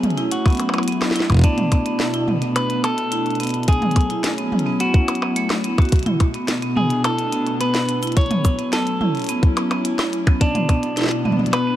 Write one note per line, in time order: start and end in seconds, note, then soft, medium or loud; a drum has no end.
0.00 1.44 F#3 loud
0.00 11.76 A3 medium
0.00 1.44 C#4 medium
0.00 0.31 G#4 loud
0.00 closed hi-hat soft
0.00 mid tom medium
0.10 closed hi-hat soft
0.18 0.29 E4 loud
0.18 2.34 E4 medium
0.18 closed hi-hat soft
0.32 1.12 F#4 medium
0.32 closed hi-hat loud
0.46 0.53 B3 medium
0.46 kick loud
0.46 closed hi-hat soft
0.46 percussion blips medium
0.48 closed hi-hat soft
0.50 closed hi-hat soft
0.53 closed hi-hat soft
0.55 closed hi-hat soft
0.57 closed hi-hat soft
0.60 closed hi-hat medium
0.60 percussion blips soft
0.69 percussion blips medium
0.74 0.85 B3 medium
0.74 closed hi-hat soft
0.74 percussion blips medium
0.78 percussion blips medium
0.83 closed hi-hat soft
0.88 0.95 B3 medium
0.88 closed hi-hat loud
0.92 closed hi-hat soft
1.02 snare loud
1.02 percussion blips medium
1.11 snare loud
1.16 1.27 E4 loud
1.16 closed hi-hat medium
1.20 snare medium
1.30 kick medium
1.30 closed hi-hat soft
1.30 percussion blips medium
1.32 kick medium
1.34 kick medium
1.37 kick medium
1.39 kick loud
1.41 3.68 B2 loud
1.41 kick loud
1.41 closed hi-hat loud
1.44 1.51 B3 medium
1.44 2.59 D4 loud
1.44 kick loud
1.58 4.58 B3 medium
1.58 closed hi-hat soft
1.58 mid tom medium
1.72 1.83 B3 medium
1.72 kick medium
1.72 closed hi-hat medium
1.72 percussion blips soft
1.86 1.94 B3 medium
1.86 closed hi-hat soft
2.00 snare loud
2.14 2.25 E4 loud
2.14 closed hi-hat soft
2.28 mid tom medium
2.41 2.50 B3 medium
2.41 3.68 D4 medium
2.41 closed hi-hat soft
2.56 2.84 B4 loud
2.56 closed hi-hat loud
2.56 percussion blips medium
2.70 2.81 B3 medium
2.70 closed hi-hat soft
2.84 2.92 B3 medium
2.84 3.68 A4 loud
2.84 closed hi-hat medium
2.84 percussion blips medium
2.98 closed hi-hat soft
3.12 3.24 E4 loud
3.12 closed hi-hat loud
3.26 closed hi-hat soft
3.31 closed hi-hat soft
3.35 closed hi-hat soft
3.40 3.48 B3 medium
3.40 closed hi-hat medium
3.43 closed hi-hat medium
3.43 closed hi-hat soft
3.47 closed hi-hat soft
3.49 closed hi-hat soft
3.63 closed hi-hat soft
3.68 5.92 F#3 medium
3.68 3.80 B3 medium
3.68 4.76 G#4 loud
3.68 kick loud
3.68 closed hi-hat medium
3.73 closed hi-hat soft
3.82 3.90 B3 medium
3.82 closed hi-hat soft
3.82 mid tom medium
3.91 closed hi-hat soft
3.96 kick medium
3.96 closed hi-hat medium
3.96 percussion blips soft
4.01 closed hi-hat soft
4.10 5.92 C#4 medium
4.10 4.22 E4 loud
4.10 closed hi-hat soft
4.24 snare loud
4.24 closed hi-hat medium
4.33 6.82 E4 medium
4.38 4.46 B3 medium
4.38 closed hi-hat soft
4.52 mid tom medium
4.59 closed hi-hat soft
4.66 4.78 B3 medium
4.80 4.88 B3 medium
4.80 5.61 F#4 medium
4.80 closed hi-hat loud
4.94 kick loud
4.94 closed hi-hat soft
5.08 5.16 B3 medium
5.08 closed hi-hat medium
5.08 percussion blips medium
5.15 closed hi-hat soft
5.22 5.30 B3 medium
5.22 percussion blips medium
5.36 5.41 A3 loud
5.36 closed hi-hat medium
5.50 snare loud
5.50 closed hi-hat soft
5.50 percussion blips medium
5.64 5.69 B3 medium
5.64 closed hi-hat medium
5.78 5.83 F#4 medium
5.78 kick loud
5.78 closed hi-hat soft
5.78 percussion blips medium
5.82 closed hi-hat soft
5.85 closed hi-hat soft
5.89 8.17 B2 medium
5.89 closed hi-hat soft
5.92 kick loud
5.92 closed hi-hat medium
5.96 closed hi-hat soft
5.99 closed hi-hat soft
6.03 closed hi-hat soft
6.06 6.18 E4 loud
6.06 closed hi-hat soft
6.06 mid tom loud
6.20 kick medium
6.20 closed hi-hat medium
6.20 percussion blips soft
6.34 6.42 B3 medium
6.34 closed hi-hat soft
6.48 snare loud
6.48 closed hi-hat medium
6.55 9.06 B3 medium
6.62 6.74 B3 medium
6.62 closed hi-hat soft
6.70 8.17 D4 medium
6.76 6.84 B3 medium
6.76 7.04 G#4 medium
6.76 mid tom medium
6.90 closed hi-hat soft
7.04 7.16 E4 loud
7.04 7.60 A4 medium
7.04 closed hi-hat medium
7.04 percussion blips medium
7.19 closed hi-hat soft
7.33 7.40 B3 medium
7.33 closed hi-hat medium
7.47 closed hi-hat soft
7.61 7.72 B3 medium
7.61 8.17 B4 loud
7.61 closed hi-hat medium
7.75 7.82 B3 medium
7.75 snare loud
7.75 closed hi-hat soft
7.89 closed hi-hat medium
8.03 8.14 E4 loud
8.03 closed hi-hat soft
8.03 cabasa medium
8.07 closed hi-hat soft
8.12 closed hi-hat soft
8.17 10.41 F#3 medium
8.17 8.73 C#5 loud
8.17 kick loud
8.17 closed hi-hat medium
8.21 closed hi-hat soft
8.26 closed hi-hat soft
8.31 8.38 B3 medium
8.31 closed hi-hat soft
8.31 mid tom loud
8.45 kick medium
8.45 closed hi-hat medium
8.45 cabasa medium
8.45 percussion blips soft
8.59 8.70 B3 medium
8.59 closed hi-hat soft
8.73 8.80 B3 medium
8.73 9.81 A4 medium
8.73 snare loud
8.73 closed hi-hat medium
8.78 10.41 C#4 medium
8.85 11.31 E4 medium
8.85 closed hi-hat soft
9.01 9.12 E4 loud
9.01 mid tom medium
9.15 closed hi-hat soft
9.17 closed hi-hat soft
9.20 closed hi-hat soft
9.22 closed hi-hat soft
9.24 closed hi-hat soft
9.27 closed hi-hat soft
9.29 9.37 B3 medium
9.29 closed hi-hat medium
9.29 cabasa medium
9.43 kick loud
9.43 closed hi-hat soft
9.57 9.68 B3 medium
9.57 closed hi-hat medium
9.57 percussion blips medium
9.71 9.79 B3 medium
9.71 closed hi-hat soft
9.71 percussion blips medium
9.85 closed hi-hat medium
9.99 10.10 E4 loud
9.99 snare loud
9.99 closed hi-hat soft
9.99 percussion blips medium
10.13 closed hi-hat medium
10.27 10.35 B3 medium
10.27 kick loud
10.27 closed hi-hat soft
10.27 percussion blips medium
10.41 11.76 B2 medium
10.41 11.57 D4 loud
10.41 kick loud
10.41 closed hi-hat medium
10.52 11.76 B3 medium
10.52 10.66 B3 medium
10.52 closed hi-hat soft
10.52 mid tom loud
10.66 10.77 B3 medium
10.66 11.76 D4 loud
10.66 kick medium
10.66 closed hi-hat medium
10.66 percussion blips soft
10.83 closed hi-hat soft
10.97 11.09 E4 loud
10.97 snare medium
10.97 closed hi-hat medium
10.99 snare medium
11.02 snare medium
11.04 snare medium
11.06 snare medium
11.09 snare loud
11.09 closed hi-hat soft
11.25 11.33 B3 medium
11.25 mid tom medium
11.32 mid tom medium
11.39 mid tom medium
11.46 closed hi-hat soft
11.46 mid tom medium
11.53 11.65 B3 medium
11.53 11.76 B4 loud
11.53 closed hi-hat medium
11.53 percussion blips medium
11.67 11.75 B3 medium